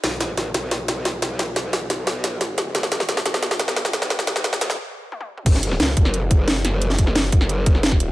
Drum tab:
CC |----------------|----------------|----------------|----------------|
HH |x-x-x-x-x-x-x-x-|x-x-x-x-x-x-x-x-|x-x-x-x-x-x-x-x-|x-x-x-x---------|
SD |o-o-o-o-o-o-o-o-|o-o-o-o-o-o-o-o-|oooooooooooooooo|oooooooo--------|
T1 |----------------|----------------|----------------|------------oo--|
T2 |----------------|----------------|----------------|---------------o|
BD |----------------|----------------|----------------|----------------|

CC |x---------------|----------------|
HH |x-x-x-x-x-x-x-x-|x-x-x-x-x-x-x-x-|
SD |-o-oo--o----o-o-|-o-oo--o---ooo--|
T1 |----------------|----------------|
T2 |----------------|----------------|
BD |o-----o---o-----|--o---o---o--o--|